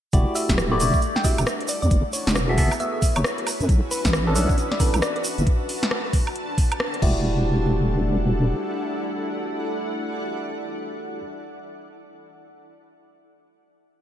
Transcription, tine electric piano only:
0.13 0.66 A3 loud
0.13 0.66 E4 medium
0.13 0.66 F#4 medium
0.13 0.66 G4 medium
0.13 0.66 D5 loud
0.72 0.78 A3 loud
0.72 0.78 E4 medium
0.72 0.78 F#4 loud
0.72 0.78 G4 loud
0.72 0.78 D5 loud
0.80 0.99 A3 medium
0.80 0.99 E4 medium
0.80 0.99 F#4 medium
0.80 0.99 G4 medium
0.80 0.99 D5 medium
1.24 1.44 A3 medium
1.24 1.44 E4 medium
1.24 1.44 F#4 medium
1.24 1.44 G4 medium
1.24 1.44 D5 medium
2.49 2.56 B3 medium
2.49 2.56 F#4 medium
2.49 2.57 G#4 medium
2.49 2.57 A4 medium
2.49 2.57 E5 loud
2.58 2.72 B3 medium
2.58 2.72 F#4 medium
2.58 2.72 G#4 medium
2.58 2.72 A4 medium
2.58 2.72 E5 loud
2.80 2.99 B3 medium
2.80 2.99 F#4 medium
2.80 2.99 G#4 medium
2.80 2.99 A4 medium
2.80 2.99 E5 medium
4.27 4.34 E3 loud
4.27 4.34 B3 loud
4.27 4.34 C#4 loud
4.27 4.34 D4 loud
4.27 4.34 A4 loud
4.36 4.55 E3 medium
4.36 4.55 B3 medium
4.36 4.55 C#4 medium
4.36 4.55 D4 medium
4.36 4.55 A4 medium
4.80 4.99 E3 medium
4.80 4.99 B3 medium
4.80 4.99 C#4 medium
4.80 4.99 D4 medium
4.80 4.99 A4 medium
7.02 11.20 A3 medium
7.02 11.20 E4 medium
7.02 11.20 F#4 medium
7.02 11.20 G4 medium
7.02 11.20 D5 medium

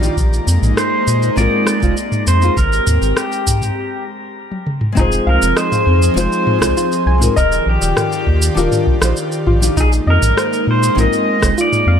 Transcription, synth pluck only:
4.97 5.26 D#4 loud
5.27 5.55 F5 medium
5.57 5.73 D#5 medium
6.77 7.04 F4 medium
7.07 7.34 G#5 medium
7.36 7.65 D#5 loud
7.97 8.13 A#4 medium
8.57 8.73 G4 medium
9.47 9.74 F4 medium
9.77 10.06 D#4 loud
10.07 10.36 D#5 medium
10.37 10.53 C5 medium
11.58 11.84 F4 medium
11.88 12.00 F5 medium

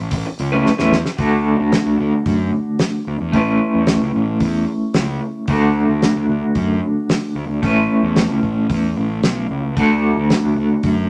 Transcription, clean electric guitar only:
0.13 muted clean electric guitar stroke soft
0.26 muted clean electric guitar stroke soft
0.52 0.70 A3 medium
0.52 0.70 C#4 medium
0.52 0.70 E4 medium
0.52 0.69 B4 medium
0.78 0.96 A3 medium
0.78 0.96 C#4 medium
0.78 0.96 E4 loud
0.78 0.96 B4 medium
1.17 3.31 D3 medium
1.17 3.32 A3 medium
1.17 3.32 D4 medium
1.17 3.32 F#4 medium
1.17 3.36 A4 medium
3.32 5.49 A3 medium
3.32 5.46 C#4 medium
3.32 5.47 E4 loud
3.32 5.48 B4 medium
5.48 7.61 D3 medium
5.48 7.62 A3 medium
5.48 7.62 D4 medium
5.48 7.62 F#4 medium
5.48 7.65 A4 loud
7.62 9.76 A3 medium
7.62 9.76 C#4 medium
7.62 9.76 E4 medium
7.62 9.77 B4 medium
9.76 11.10 D3 medium
9.76 11.10 A3 medium
9.76 11.10 D4 medium
9.76 11.10 F#4 medium
9.76 11.10 A4 loud

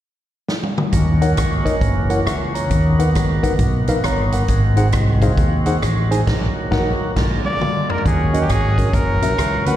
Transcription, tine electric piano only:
0.93 1.62 D#3 medium
1.22 1.30 D#4 medium
1.22 1.30 A#4 medium
1.22 1.30 C#5 medium
1.22 1.30 F#5 medium
1.65 1.74 D#4 medium
1.65 1.74 A#4 medium
1.65 1.74 C#5 medium
1.65 1.75 D#5 medium
2.10 2.19 E4 medium
2.10 2.19 A#4 medium
2.10 2.19 C#5 medium
2.10 2.19 F#5 medium
2.26 2.53 E5 medium
2.26 2.53 C#6 medium
2.55 2.97 C#5 medium
2.55 2.97 A#5 medium
2.71 3.40 D#3 medium
2.99 3.08 D#4 medium
2.99 3.08 A#4 medium
2.99 3.08 B4 medium
2.99 3.08 F#5 medium
3.43 3.52 D#4 medium
3.43 3.52 A#4 medium
3.43 3.53 B4 medium
3.43 3.53 F#5 medium
3.88 3.97 D#4 medium
3.88 3.98 A#4 medium
3.88 3.98 B4 medium
3.88 3.98 F5 medium
4.05 4.32 C#5 medium
4.05 4.32 A#5 medium
4.33 4.76 A#4 medium
4.33 4.75 F#5 medium
4.49 5.18 G#2 medium
4.77 4.86 D#4 medium
4.77 4.87 G#4 medium
4.77 4.86 C5 medium
4.77 4.86 F#5 medium
5.22 5.31 D#4 medium
5.22 5.31 G#4 medium
5.22 5.31 C5 medium
5.22 5.31 F5 medium
5.66 5.75 D#4 medium
5.66 5.75 G#4 medium
5.66 5.76 C5 medium
5.66 5.75 F#5 medium
6.11 6.20 D#4 medium
6.11 6.20 G#4 medium
6.11 6.20 C5 medium
6.11 6.20 G#5 medium
6.71 6.91 D#4 medium
6.71 6.91 F#4 medium
6.71 6.91 A#4 medium
6.71 6.91 F#5 medium
8.05 8.74 D#3 medium
8.33 8.42 C#4 medium
8.33 8.42 F#4 medium
8.33 8.43 A#4 medium
8.33 8.43 D#5 medium
8.79 8.87 C#4 medium
8.79 8.87 F#4 medium
8.79 8.87 A#4 medium
8.79 8.87 C#5 medium
9.22 9.31 C#4 medium
9.22 9.32 F#4 medium
9.22 9.32 A#4 medium
9.22 9.32 E5 medium
9.67 9.76 C#4 medium
9.67 9.76 F#4 medium
9.67 9.76 A#4 medium
9.67 9.76 F#5 medium

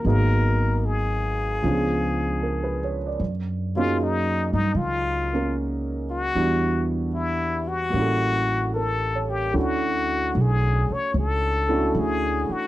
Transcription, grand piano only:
0.05 1.63 F#3 soft
0.05 1.63 A#3 soft
0.05 1.61 B3 soft
0.05 1.63 D#4 soft
0.05 1.64 G#4 soft
1.62 3.19 F3 soft
1.62 3.19 B3 soft
1.62 3.20 C#4 soft
1.62 3.21 D4 soft
1.67 3.22 G#4 soft
2.43 2.80 A#4 soft
2.64 2.96 B4 soft
2.84 3.06 C#5 soft
3.07 3.31 D5 soft
3.76 6.36 F#3 soft
3.76 5.31 A#3 soft
3.76 5.33 C#4 soft
3.76 6.38 D#4 soft
3.81 6.39 G#4 medium
5.33 6.36 A#3 soft
5.33 6.37 C#4 soft
5.33 6.37 A#4 soft
6.35 7.89 G3 soft
6.35 7.94 B3 soft
6.35 7.95 D4 soft
6.35 7.95 E4 soft
6.35 7.95 F#4 soft
7.90 9.54 G3 soft
7.90 9.55 A#3 soft
7.95 9.52 C#4 soft
7.95 9.53 E4 soft
8.01 9.59 A4 soft
8.76 9.40 A#4 soft
9.15 9.72 C#5 soft
9.53 10.04 A3 soft
9.53 10.05 C#4 soft
9.53 10.05 D4 soft
9.53 10.05 E4 soft
9.53 10.05 F#4 soft
11.69 11.91 A3 soft
11.69 11.92 C#4 soft
11.69 11.91 D4 soft
11.69 11.92 E4 soft
11.69 11.92 F#4 medium

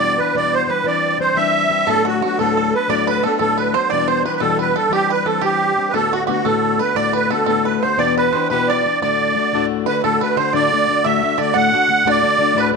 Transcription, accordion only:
0.00 0.20 D5 loud
0.19 0.36 B4 medium
0.36 0.54 D5 loud
0.54 0.71 C5 loud
0.69 0.86 B4 medium
0.87 1.18 D5 loud
1.21 1.37 C5 medium
1.36 1.89 E5 loud
1.89 2.07 A4 loud
2.08 2.23 F#4 medium
2.24 2.38 F#4 medium
2.39 2.74 A4 medium
2.74 2.90 B4 medium
2.90 3.08 D5 loud
3.09 3.25 B4 medium
3.24 3.39 A4 medium
3.41 3.59 A4 loud
3.58 3.75 B4 medium
3.75 3.91 C5 medium
3.91 4.07 D5 loud
4.08 4.23 C5 medium
4.25 4.35 B4 medium
4.36 4.41 B4 medium
4.41 4.58 A4 loud
4.61 4.77 B4 medium
4.77 4.92 A4 medium
4.93 5.11 G4 loud
5.12 5.28 B4 medium
5.27 5.42 A4 medium
5.44 5.92 G4 loud
5.90 5.94 B4 medium
5.96 6.14 A4 loud
6.13 6.24 F#4 medium
6.26 6.29 G4 medium
6.31 6.47 F#4 medium
6.46 6.81 A4 medium
6.81 6.96 B4 medium
6.96 7.13 D5 medium
7.16 7.32 B4 medium
7.32 7.47 A4 medium
7.48 7.66 A4 loud
7.66 7.83 B4 medium
7.82 7.99 C5 medium
7.99 8.15 D5 loud
8.18 8.48 B4 medium
8.49 8.68 B4 medium
8.68 9.00 D5 medium
9.01 9.66 D5 medium
9.88 10.02 B4 medium
10.03 10.22 A4 loud
10.23 10.37 B4 medium
10.38 10.53 C5 medium
10.55 11.06 D5 loud
11.05 11.40 E5 loud
11.41 11.57 D5 medium
11.57 12.09 F#5 loud
12.09 12.60 D5 loud
12.58 12.71 B4 medium

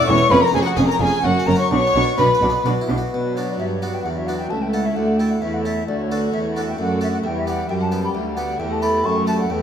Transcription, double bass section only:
0.09 0.17 E1 medium
0.31 0.39 F1 medium
0.54 0.62 F1 medium
0.77 0.85 F1 medium
1.00 1.08 F1 medium
1.24 1.32 F#1 medium
1.48 1.56 F#1 medium
1.71 1.79 B1 medium
1.95 2.03 B1 medium
2.19 2.27 B1 medium
2.42 2.50 B1 medium
2.66 2.74 B1 medium
2.90 2.98 B1 medium

